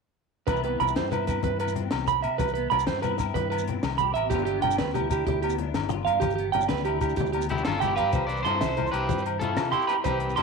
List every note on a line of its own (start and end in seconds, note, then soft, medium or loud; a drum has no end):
0.47 0.77 C2 medium
0.47 0.76 C3 medium
0.47 0.95 E3 medium
0.47 0.65 B3 medium
0.47 0.80 C4 medium
0.47 1.10 E4 medium
0.47 0.60 B4 loud
0.47 kick medium
0.47 closed hi-hat medium
0.47 high conga medium
0.47 low conga medium
0.47 low agogo medium
0.47 shekere medium
0.56 shekere soft
0.64 1.59 B3 medium
0.64 0.77 B4 medium
0.64 closed hi-hat soft
0.80 0.98 C2 medium
0.80 1.27 C4 medium
0.80 0.93 B5 medium
0.80 closed hi-hat soft
0.80 low conga medium
0.80 low agogo medium
0.88 shekere medium
0.95 1.26 G2 medium
0.95 1.24 E3 medium
0.95 1.09 C5 medium
0.95 snare loud
0.95 closed hi-hat medium
0.95 high conga medium
0.95 shekere soft
1.11 2.07 E4 soft
1.11 1.25 B4 medium
1.11 closed hi-hat soft
1.11 low conga medium
1.11 low agogo medium
1.11 shekere soft
1.20 low conga soft
1.27 1.42 G2 medium
1.27 1.74 C4 medium
1.27 1.41 B4 medium
1.27 kick medium
1.27 closed hi-hat soft
1.27 low agogo medium
1.27 shekere medium
1.42 1.88 G2 medium
1.42 1.72 C3 medium
1.42 1.57 B4 medium
1.42 kick medium
1.42 closed hi-hat medium
1.42 high conga medium
1.42 low conga medium
1.59 2.42 B3 medium
1.59 1.73 B4 medium
1.59 closed hi-hat soft
1.59 low agogo medium
1.67 low conga soft
1.67 shekere medium
1.75 2.23 C4 medium
1.75 closed hi-hat medium
1.75 low conga medium
1.91 2.26 C2 medium
1.91 2.20 E3 medium
1.91 snare medium
1.91 closed hi-hat medium
1.91 high conga medium
1.91 low agogo medium
2.07 2.21 B5 medium
2.07 muted clean electric guitar stroke medium
2.07 closed hi-hat soft
2.07 low conga medium
2.07 shekere medium
2.16 low conga soft
2.22 2.38 C3 medium
2.22 2.38 C4 medium
2.22 2.36 E5 medium
2.22 closed hi-hat soft
2.22 low agogo medium
2.32 low conga soft
2.38 2.69 C2 medium
2.38 2.68 C3 medium
2.38 2.52 B4 medium
2.38 kick medium
2.38 closed hi-hat medium
2.38 high conga medium
2.38 low conga medium
2.38 low agogo medium
2.38 shekere medium
2.48 shekere soft
2.54 3.51 B3 medium
2.54 2.67 B4 medium
2.54 closed hi-hat soft
2.70 2.88 C2 medium
2.70 3.18 C4 medium
2.70 2.83 B5 medium
2.70 closed hi-hat soft
2.70 low conga medium
2.70 low agogo medium
2.79 shekere medium
2.87 3.16 G2 medium
2.87 3.16 E3 medium
2.87 3.00 C5 medium
2.87 snare medium
2.87 closed hi-hat medium
2.87 high conga medium
2.87 shekere soft
3.02 3.99 E4 medium
3.02 3.15 B4 medium
3.02 closed hi-hat soft
3.02 low conga medium
3.02 low agogo medium
3.02 shekere soft
3.12 low conga soft
3.18 3.34 G2 medium
3.18 3.66 C4 medium
3.18 muted clean electric guitar stroke medium
3.18 kick medium
3.18 snare soft
3.18 closed hi-hat soft
3.18 low agogo medium
3.18 shekere medium
3.34 3.79 G2 medium
3.34 3.64 C3 medium
3.34 3.47 B4 medium
3.34 kick medium
3.34 closed hi-hat medium
3.34 high conga medium
3.34 low conga medium
3.50 4.32 B3 medium
3.50 3.63 B4 medium
3.50 closed hi-hat soft
3.50 low agogo medium
3.58 low conga soft
3.58 shekere medium
3.68 4.15 C4 medium
3.68 closed hi-hat medium
3.68 low conga medium
3.83 4.16 C2 medium
3.83 4.12 E3 medium
3.83 snare medium
3.83 closed hi-hat medium
3.83 high conga medium
3.83 low agogo medium
3.98 4.34 G4 medium
3.98 4.11 B5 medium
3.98 closed hi-hat soft
3.98 low conga medium
3.98 shekere medium
4.08 low conga soft
4.14 4.30 A1 medium
4.14 4.30 C4 medium
4.14 4.27 E5 medium
4.14 closed hi-hat medium
4.14 low agogo medium
4.23 low conga soft
4.30 4.60 G1 loud
4.30 4.60 G2 medium
4.30 4.78 D3 medium
4.30 4.49 B3 medium
4.30 4.65 D4 medium
4.30 4.43 G4 medium
4.30 kick medium
4.30 closed hi-hat medium
4.30 high conga medium
4.30 low conga medium
4.30 low agogo medium
4.30 shekere medium
4.34 4.97 F4 medium
4.38 shekere soft
4.45 5.44 B3 medium
4.45 4.59 G4 medium
4.45 closed hi-hat soft
4.62 4.80 G1 medium
4.62 5.13 D4 medium
4.62 4.75 G5 medium
4.62 closed hi-hat soft
4.62 low conga medium
4.62 low agogo medium
4.71 shekere medium
4.78 5.08 D2 medium
4.78 5.07 D3 medium
4.78 4.91 B4 medium
4.78 snare medium
4.78 closed hi-hat medium
4.78 high conga medium
4.78 shekere soft
4.94 5.91 E4 medium
4.94 5.07 G4 medium
4.94 closed hi-hat soft
4.94 low conga medium
4.94 low agogo medium
4.94 shekere soft
5.05 low conga soft
5.10 5.25 D2 loud
5.10 5.60 D4 medium
5.10 5.24 G4 medium
5.10 kick medium
5.10 closed hi-hat soft
5.10 low agogo medium
5.10 shekere medium
5.27 5.70 D2 medium
5.27 5.55 G2 medium
5.27 5.39 G4 medium
5.27 kick medium
5.27 closed hi-hat medium
5.27 high conga medium
5.27 low conga medium
5.42 6.39 B3 medium
5.42 5.55 G4 medium
5.42 closed hi-hat soft
5.42 low agogo medium
5.50 low conga soft
5.50 shekere medium
5.58 6.07 D4 medium
5.58 closed hi-hat soft
5.58 low conga medium
5.74 6.07 G1 medium
5.74 6.03 D3 medium
5.74 snare medium
5.74 closed hi-hat medium
5.74 high conga medium
5.74 low agogo medium
5.89 6.20 F4 medium
5.89 muted clean electric guitar stroke medium
5.89 closed hi-hat soft
5.89 low conga medium
5.89 shekere medium
6.00 low conga soft
6.05 6.20 G2 medium
6.05 6.21 D4 medium
6.05 6.18 F5 medium
6.05 closed hi-hat soft
6.05 low agogo medium
6.14 low conga soft
6.20 6.51 G1 loud
6.20 6.34 G4 medium
6.20 kick medium
6.20 closed hi-hat medium
6.20 high conga loud
6.20 low conga medium
6.20 low agogo medium
6.20 shekere medium
6.24 6.52 G2 medium
6.30 low conga soft
6.30 shekere soft
6.36 7.34 B3 medium
6.36 6.49 G4 medium
6.36 closed hi-hat soft
6.36 low conga soft
6.52 6.71 G1 medium
6.52 7.03 D4 medium
6.52 6.66 G5 medium
6.52 closed hi-hat medium
6.52 low conga medium
6.52 low agogo medium
6.61 low conga soft
6.61 shekere medium
6.68 6.99 D2 medium
6.68 6.99 D3 medium
6.68 6.82 B4 medium
6.68 snare medium
6.68 closed hi-hat medium
6.68 high conga medium
6.68 shekere soft
6.77 low conga soft
6.77 shekere soft
6.85 7.82 E4 medium
6.85 6.98 G4 medium
6.85 closed hi-hat medium
6.85 low agogo medium
7.01 7.16 D2 medium
7.01 7.51 D4 medium
7.01 7.14 G4 medium
7.01 kick medium
7.01 closed hi-hat soft
7.01 low agogo medium
7.01 shekere medium
7.09 low conga soft
7.09 shekere soft
7.16 7.61 D2 medium
7.16 7.47 G2 medium
7.16 7.30 G4 medium
7.16 kick medium
7.16 closed hi-hat medium
7.16 shekere soft
7.21 high conga medium
7.21 low conga loud
7.26 shekere soft
7.32 7.46 G4 medium
7.32 closed hi-hat soft
7.32 low agogo medium
7.37 8.13 B3 medium
7.42 shekere medium
7.49 7.97 D4 medium
7.49 7.64 E4 medium
7.49 7.65 G4 medium
7.49 closed hi-hat medium
7.49 low conga medium
7.57 shekere soft
7.65 8.00 G1 medium
7.65 7.96 D3 medium
7.65 7.80 F4 medium
7.65 7.82 A4 medium
7.65 snare medium
7.65 closed hi-hat medium
7.65 high conga medium
7.65 low conga soft
7.65 low agogo medium
7.80 7.95 E4 medium
7.80 8.12 F4 medium
7.80 7.96 G4 medium
7.80 7.94 G5 medium
7.80 closed hi-hat soft
7.80 low conga medium
7.80 shekere medium
7.92 low conga soft
7.96 8.13 G2 medium
7.96 8.12 D4 medium
7.96 8.27 G4 medium
7.96 8.26 B4 medium
7.96 8.10 F5 medium
7.96 closed hi-hat soft
7.96 low conga soft
7.96 low agogo medium
7.96 shekere soft
8.12 8.43 C2 medium
8.12 8.42 C3 medium
8.12 8.26 C5 medium
8.12 kick medium
8.12 closed hi-hat medium
8.12 high conga medium
8.12 low conga medium
8.12 low agogo medium
8.12 shekere medium
8.27 8.92 C4 medium
8.27 8.43 B4 medium
8.27 8.42 C5 medium
8.27 8.42 D5 medium
8.27 closed hi-hat soft
8.27 shekere soft
8.37 low conga soft
8.37 shekere soft
8.43 8.60 G2 medium
8.43 9.41 E4 medium
8.43 8.89 A4 medium
8.43 8.89 C5 medium
8.43 8.58 C6 medium
8.43 closed hi-hat soft
8.43 low conga medium
8.47 low agogo medium
8.60 8.90 C2 medium
8.60 8.89 E3 medium
8.60 8.74 E5 medium
8.60 snare medium
8.60 closed hi-hat medium
8.60 high conga medium
8.60 shekere medium
8.77 8.90 C5 medium
8.77 closed hi-hat soft
8.77 low conga medium
8.77 low agogo medium
8.87 shekere soft
8.92 9.08 C2 medium
8.92 9.25 C4 medium
8.92 9.23 G4 medium
8.92 9.22 B4 medium
8.92 9.05 C5 medium
8.92 closed hi-hat soft
8.92 low conga soft
8.92 low agogo medium
9.08 9.57 G2 medium
9.08 9.37 C3 medium
9.08 9.21 C5 medium
9.08 kick medium
9.08 closed hi-hat medium
9.08 high conga medium
9.08 low conga medium
9.08 shekere medium
9.18 shekere soft
9.22 9.88 C4 soft
9.22 9.36 C5 medium
9.22 closed hi-hat soft
9.26 low agogo medium
9.39 10.38 E4 medium
9.39 9.71 F4 medium
9.39 9.71 A4 medium
9.39 closed hi-hat medium
9.39 low conga medium
9.57 9.72 C3 medium
9.57 9.86 E3 medium
9.57 snare medium
9.57 closed hi-hat medium
9.57 high conga medium
9.57 low conga soft
9.57 low agogo medium
9.57 shekere medium
9.71 9.87 E4 medium
9.71 9.89 G4 medium
9.71 9.85 C6 medium
9.71 closed hi-hat soft
9.71 low conga medium
9.81 shekere soft
9.87 10.03 C4 medium
9.87 9.95 G4 medium
9.87 9.93 B4 medium
9.87 10.01 B5 medium
9.87 closed hi-hat soft
9.87 low conga soft
9.87 low agogo medium
9.98 low conga soft
10.04 10.34 C2 medium
10.04 10.34 C3 medium
10.04 10.34 G4 medium
10.04 10.35 B4 medium
10.04 10.17 C5 medium
10.04 kick medium
10.04 closed hi-hat medium
10.04 high conga medium
10.04 low conga medium
10.04 low agogo medium
10.04 shekere medium
10.20 10.43 C4 medium
10.20 closed hi-hat soft
10.29 low conga soft
10.29 shekere soft
10.36 10.43 G2 medium
10.36 10.43 E4 medium
10.36 10.43 G4 medium
10.36 10.43 C6 medium
10.36 closed hi-hat soft
10.36 low conga medium
10.36 low agogo medium